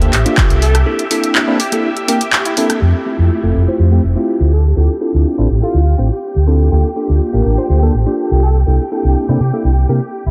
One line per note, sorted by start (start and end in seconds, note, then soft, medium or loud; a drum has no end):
0.00 0.11 A#3 medium
0.00 0.11 D4 medium
0.00 0.11 F4 medium
0.00 2.80 G4 medium
0.00 0.11 G4 medium
0.00 0.11 A4 loud
0.00 2.83 E5 medium
0.00 closed hi-hat soft
0.13 0.23 A1 medium
0.13 clap medium
0.13 open hi-hat loud
0.25 0.60 A#3 loud
0.25 0.60 D4 medium
0.25 0.61 F4 medium
0.25 0.61 G4 medium
0.25 0.61 A4 loud
0.25 closed hi-hat medium
0.37 kick loud
0.37 clap loud
0.50 0.82 C2 medium
0.50 closed hi-hat medium
0.62 0.76 A4 loud
0.62 open hi-hat medium
0.75 cross-stick medium
0.75 closed hi-hat medium
0.85 1.02 A#3 medium
0.85 1.02 C4 medium
0.85 1.02 D4 medium
0.85 1.02 E4 medium
0.85 1.03 A4 medium
0.99 closed hi-hat medium
1.10 1.45 A#3 medium
1.10 1.45 C4 medium
1.10 1.45 D4 medium
1.10 1.45 E4 medium
1.10 1.45 A4 medium
1.10 open hi-hat loud
1.24 closed hi-hat medium
1.35 clap loud
1.47 1.57 A#3 medium
1.47 1.57 C4 medium
1.47 1.57 D4 medium
1.47 1.57 E4 medium
1.47 1.58 A4 loud
1.59 1.74 G4 medium
1.59 open hi-hat loud
1.72 1.87 A#3 medium
1.72 1.88 C4 medium
1.72 1.88 D4 medium
1.72 1.88 E4 medium
1.72 1.88 A4 loud
1.72 closed hi-hat medium
1.97 closed hi-hat soft
2.08 2.18 A#3 medium
2.08 2.18 C4 medium
2.08 2.19 D4 medium
2.08 2.19 E4 medium
2.08 2.43 G4 medium
2.08 2.19 A#4 medium
2.08 open hi-hat loud
2.21 closed hi-hat medium
2.33 clap loud
2.45 2.53 E4 medium
2.45 closed hi-hat medium
2.57 2.79 A#3 medium
2.57 2.79 C4 medium
2.57 2.79 D4 medium
2.57 2.65 E4 medium
2.57 2.79 E4 medium
2.57 2.79 A4 loud
2.57 open hi-hat loud
2.70 cross-stick medium
2.70 closed hi-hat medium
2.81 2.91 F2 medium
2.81 2.98 A3 medium
2.81 2.98 C4 medium
2.81 10.31 G4 medium
2.81 2.98 G4 medium
2.81 10.31 G5 medium
3.06 3.40 A3 medium
3.06 3.40 C4 medium
3.06 3.40 E4 medium
3.06 3.40 F4 medium
3.06 3.40 G4 medium
3.19 3.27 F2 medium
3.43 3.52 F1 medium
3.43 3.64 A3 medium
3.43 3.64 C4 medium
3.43 3.64 E4 medium
3.43 3.65 F4 medium
3.43 3.65 A4 medium
3.55 3.64 F1 medium
3.67 3.89 A3 medium
3.67 3.89 C4 medium
3.67 3.89 E4 medium
3.67 3.89 F4 medium
3.67 3.89 G4 medium
3.67 3.75 C5 medium
3.79 3.98 F2 medium
3.79 3.87 C5 medium
3.91 4.01 A3 medium
3.91 4.01 C4 medium
3.91 4.01 E4 medium
3.91 4.01 F4 medium
3.91 4.01 G4 loud
4.04 4.13 F1 medium
4.15 4.51 A3 medium
4.15 4.51 C4 medium
4.15 4.51 E4 medium
4.15 4.51 F4 medium
4.15 4.51 G4 loud
4.40 4.72 D2 medium
4.53 4.67 A4 medium
4.76 4.86 D2 medium
4.76 4.92 C4 medium
4.76 4.93 D4 medium
4.76 4.93 E4 medium
4.76 4.93 F4 medium
4.76 4.91 G4 medium
4.76 4.93 A4 medium
5.01 5.35 C4 medium
5.01 5.35 D4 medium
5.01 5.35 E4 medium
5.01 5.35 F4 medium
5.01 5.35 A4 medium
5.14 5.23 D2 medium
5.38 5.47 A1 medium
5.38 5.47 C4 medium
5.38 5.47 D4 medium
5.38 5.48 E4 medium
5.38 5.48 F4 medium
5.38 5.48 A4 loud
5.50 5.60 A1 medium
5.62 5.77 C4 medium
5.62 5.78 D4 medium
5.62 5.78 E4 medium
5.62 5.78 F4 medium
5.62 5.99 F4 loud
5.62 5.78 A4 medium
5.74 5.93 D2 medium
5.98 6.08 A1 medium
5.98 6.09 C4 medium
5.98 6.09 D4 medium
5.98 6.09 E4 medium
5.98 6.09 F4 medium
5.98 6.09 C5 medium
6.36 6.67 D2 medium
6.47 6.69 C4 medium
6.47 6.69 D4 medium
6.47 6.69 E4 medium
6.47 6.69 F4 medium
6.47 6.69 A4 medium
6.71 6.81 D2 medium
6.71 6.88 A#3 medium
6.71 6.88 D4 medium
6.71 6.88 F4 medium
6.71 6.88 G4 medium
6.71 6.88 A4 medium
6.96 7.30 A#3 medium
6.96 7.30 D4 medium
6.96 7.30 F4 medium
6.96 7.30 G4 medium
6.96 7.31 A4 medium
7.09 7.18 D2 medium
7.33 7.42 A1 medium
7.33 7.54 A#3 medium
7.33 7.55 D4 medium
7.33 7.55 F4 medium
7.33 7.55 G4 medium
7.33 7.55 A#4 medium
7.45 7.55 A1 medium
7.57 7.79 A#3 medium
7.57 7.79 D4 medium
7.57 7.79 F4 medium
7.57 7.79 G4 medium
7.57 7.79 A4 medium
7.57 7.65 C5 medium
7.69 7.88 D2 medium
7.69 7.78 C5 medium
7.82 7.92 A#3 medium
7.82 7.92 D4 medium
7.82 7.92 F4 medium
7.82 7.92 G4 medium
7.82 7.92 A4 loud
7.94 8.03 A1 medium
8.06 8.41 A#3 medium
8.06 8.41 D4 medium
8.06 8.41 F4 medium
8.06 8.41 G4 medium
8.06 8.41 A4 loud
8.31 8.62 C2 medium
8.42 8.57 A4 medium
8.66 8.77 C2 medium
8.66 8.83 A#3 medium
8.66 8.83 C4 medium
8.66 8.83 D4 medium
8.66 8.83 E4 medium
8.66 8.83 A4 medium
8.91 9.25 A#3 medium
8.91 9.26 C4 medium
8.91 9.26 D4 medium
8.91 9.26 E4 medium
8.91 9.26 A4 medium
9.04 9.13 C2 medium
9.28 9.37 C3 medium
9.28 9.38 A#3 medium
9.28 9.38 C4 medium
9.28 9.38 D4 medium
9.28 9.38 E4 medium
9.28 9.39 A4 medium
9.40 9.50 C3 loud
9.40 9.54 G4 medium
9.53 9.68 A#3 medium
9.53 9.68 C4 medium
9.53 9.68 D4 medium
9.53 9.69 E4 medium
9.53 9.69 A4 medium
9.64 9.83 C2 medium
9.89 9.98 C3 medium
9.89 9.99 A#3 medium
9.89 9.99 C4 medium
9.89 9.99 D4 medium
9.89 9.99 E4 medium
9.89 10.24 G4 medium
9.89 9.99 A#4 medium
10.26 10.31 C2 medium
10.26 10.31 E4 medium